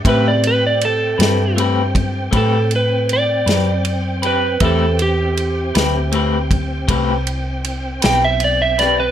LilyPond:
<<
  \new Staff \with { instrumentName = "Electric slide guitar" } { \time 12/8 \key a \dorian \tempo 4. = 53 b'16 d''16 b'16 d''16 a'4 r4 a'8 b'8 d''4. b'8 | a'8 g'2. r4 g''16 e''16 d''16 e''16 d''16 b'16 | }
  \new Staff \with { instrumentName = "Upright piano" } { \time 12/8 \key a \dorian <c' g' b' e''>1. | <g' b' c'' e''>1. | }
  \new Staff \with { instrumentName = "Clean electric guitar" } { \time 12/8 \key a \dorian <a c' g' b'>8 r4 <c' g' b'>8 <a c' g' b'>8 r8 <a c' g' b'>8 r4 <c' g' b'>8 r8 <c' g' b'>8 | <a c' g' b'>8 r4 <c' g' b'>8 <a c' g' b'>8 r8 <a c' g' b'>8 r4 <c' g' b'>8 r8 <c' g' b'>8 | }
  \new Staff \with { instrumentName = "Tonewheel organ" } { \time 12/8 \key a \dorian <cis c' g''>8 <c' g''>1~ <c' g''>4. | <c' g''>1. | }
  \new Staff \with { instrumentName = "Fingered electric bass" } { \clef bass \time 12/8 \key a \dorian a,4. g,4. a,4. fis,4. | e,4. d,4. c,4. b,,4. | }
  \new DrumStaff \with { instrumentName = "Drums" } \drummode { \time 12/8 <bd cymr>8 cymr8 cymr8 <cymr sn>8 cymr8 <bd cymr>8 <bd cymr>8 cymr8 cymr8 <cymr sn>8 cymr8 cymr8 | <bd cymr>8 cymr8 cymr8 <cymr sn>8 cymr8 <bd cymr>8 <bd cymr>8 cymr8 cymr8 <cymr sn>8 cymr8 <cymr sn>8 | }
>>